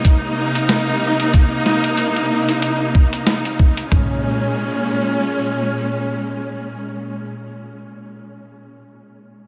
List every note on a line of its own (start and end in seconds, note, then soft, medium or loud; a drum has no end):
0.00 3.88 C3 medium
0.00 3.88 A#3 medium
0.00 3.88 D#4 medium
0.05 kick loud
0.05 closed hi-hat medium
0.55 closed hi-hat medium
0.69 snare loud
0.69 closed hi-hat medium
1.20 closed hi-hat soft
1.34 kick loud
1.34 closed hi-hat medium
1.66 snare medium
1.84 closed hi-hat soft
1.97 closed hi-hat medium
2.16 closed hi-hat soft
2.49 closed hi-hat soft
2.62 closed hi-hat medium
2.95 kick medium
3.13 closed hi-hat soft
3.27 snare loud
3.27 closed hi-hat medium
3.45 closed hi-hat soft
3.59 kick loud
3.77 closed hi-hat soft
3.92 7.26 A#2 medium
3.92 7.26 G#3 medium
3.92 7.26 C#4 medium
3.92 kick medium
3.92 floor tom medium